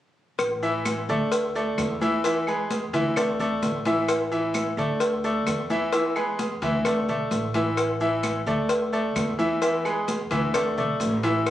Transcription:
0.39 upright bass A1, cowbell, high conga, claves, maracas
0.62 grand piano E3 E4 E5, high conga, maracas
0.85 cowbell, high conga, claves, maracas
1.09 upright bass D2, grand piano A3 A4 D5, maracas
1.32 cowbell, high conga, maracas
1.55 grand piano A3 A4 D5, high conga, maracas
1.78 upright bass E2, cowbell, high conga, claves, maracas
2.01 grand piano E3 E4 E5, high conga, maracas
2.24 grand piano E3 E4 E5, cowbell, high conga, maracas
2.47 grand piano G#3 G#4 B4, high conga, claves, maracas
2.71 cowbell, high conga, maracas
2.93 upright bass D2, grand piano E3 E4 E5, cowbell, high conga, maracas
3.16 grand piano A3 A4 D5, cowbell, high conga, low conga, claves, maracas
3.39 grand piano A3 A4 D5, high conga, low conga, maracas
3.62 upright bass A1, cowbell, high conga, maracas
3.85 grand piano E3 E4 E5, cowbell, high conga, maracas
4.08 cowbell, high conga, claves, maracas
4.31 grand piano E3 E4 E5, high conga, maracas
4.54 cowbell, high conga, claves, maracas
4.77 upright bass D2, grand piano A3 A4 D5, maracas
5.00 cowbell, high conga, maracas
5.24 grand piano A3 A4 D5, high conga, maracas
5.47 upright bass E2, cowbell, high conga, claves, maracas
5.70 grand piano E3 E4 E5, high conga, maracas
5.93 grand piano E3 E4 E5, cowbell, high conga, maracas
6.16 grand piano G#3 G#4 B4, high conga, claves, maracas
6.39 cowbell, high conga, maracas
6.62 upright bass D2, grand piano E3 E4 E5, cowbell, high conga, maracas
6.85 grand piano A3 A4 D5, cowbell, high conga, low conga, claves, maracas
7.08 upright bass B1, grand piano A3 A4 D5, high conga, low conga, maracas
7.31 upright bass A1, cowbell, high conga, maracas
7.54 grand piano E3 E4 E5, cowbell, high conga, maracas
7.77 cowbell, high conga, claves, maracas
8.00 grand piano E3 E4 E5, high conga, maracas
8.23 cowbell, high conga, claves, maracas
8.46 upright bass D2, grand piano A3 A4 D5, maracas
8.69 cowbell, high conga, maracas
8.93 grand piano A3 A4 D5, high conga, maracas
9.16 upright bass E2, cowbell, high conga, claves, maracas
9.39 grand piano E3 E4 E5, high conga, maracas
9.62 grand piano E3 E4 E5, cowbell, high conga, maracas
9.85 grand piano G#3 G#4 B4, high conga, claves, maracas
10.08 cowbell, high conga, maracas
10.31 upright bass D2, grand piano E3 E4 E5, cowbell, maracas
10.54 grand piano A3 A4 D5, cowbell, high conga, low conga, claves, maracas
10.77 upright bass B1, grand piano A3 A4 D5, high conga, low conga, maracas
11.00 upright bass A1, cowbell, high conga, maracas
11.23 grand piano E3 E4 E5, cowbell, high conga, maracas
11.46 cowbell, high conga, claves, maracas

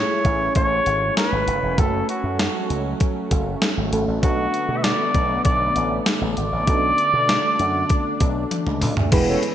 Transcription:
Already playing: fm electric piano A3 C#4 E4 G#4, analog synth pad A3 C#4 G#4, flugelhorn C#5
0.25 slap bass A1, kick, closed hi-hat
0.55 slap bass A1, flugelhorn C#5, kick, closed hi-hat
0.86 slap bass G#1, closed hi-hat
1.17 flugelhorn B4, snare, closed hi-hat
1.32 slap bass G#1
1.47 slap bass F#1, closed hi-hat
1.63 slap bass E1
1.77 slap bass F#1, analog synth pad F#3, fm electric piano A3 C#4 F#4 A4, flugelhorn A4, kick, closed hi-hat
2.09 flugelhorn F#4, closed hi-hat
2.24 slap bass F#2
2.39 flugelhorn F#4, snare, closed hi-hat
2.70 slap bass C#2, closed hi-hat
3.00 kick, closed hi-hat
3.31 slap bass F#1, kick, closed hi-hat
3.62 snare, closed hi-hat
3.77 slap bass G#1
3.92 slap bass G#1, fm electric piano A3 C#4 F#4 A4, closed hi-hat
4.08 slap bass A1
4.22 slap bass B1, analog synth pad D3 B3, fm electric piano B3 D4 F#4 A4, flugelhorn F#4, kick, closed hi-hat
4.54 closed hi-hat
4.69 slap bass B2
4.77 flugelhorn E5
4.83 flugelhorn D5, snare, closed hi-hat
5.15 slap bass B1, kick, closed hi-hat
5.45 slap bass B1, flugelhorn D5, kick, closed hi-hat
5.75 slap bass A1, closed hi-hat
6.06 snare, closed hi-hat
6.21 slap bass A1
6.37 slap bass G#1, flugelhorn D5, closed hi-hat
6.52 slap bass A1
6.67 slap bass B1, fm electric piano B3 C#4 F#4 A4, analog synth pad D4, kick, closed hi-hat
6.74 fm electric piano D4
6.98 closed hi-hat
7.14 slap bass B2
7.29 snare, closed hi-hat
7.59 slap bass F#2, closed hi-hat
7.89 kick, closed hi-hat
8.20 slap bass B1, kick, closed hi-hat
8.51 closed hi-hat, high tom
8.66 slap bass C#2, mid tom
8.82 slap bass C#2, mid tom, open hi-hat
8.97 slap bass D2, floor tom
9.11 slap bass E1, analog synth pad E3 G#3 B3, fm electric piano G#3 B3 E4 G#4 B4, kick, closed hi-hat, crash
9.28 analog polysynth C#4 A4 C#5
9.43 closed hi-hat

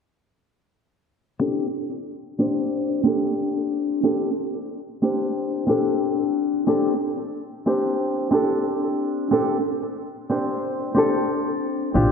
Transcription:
1.39 nylon-string guitar C4 D4 G4 A4
2.39 nylon-string guitar C4 D4 G4 C5
3.03 nylon-string guitar C4 D4 G4 A4
4.03 nylon-string guitar C4 D4 G4 A4
5.02 nylon-string guitar C4 D4 G4 C5
5.67 nylon-string guitar C4 D4 G4 A4
6.67 nylon-string guitar C4 D4 G4 A4
7.66 nylon-string guitar C4 D4 G4 C5
8.31 nylon-string guitar C4 D4 G4 A4
9.31 nylon-string guitar C4 D4 G4 A4
10.29 nylon-string guitar C4 D4 G4 C5
10.94 nylon-string guitar C4 D4 G4 A4
11.94 upright bass A#1, nylon-string guitar C4 D4 F4 G4

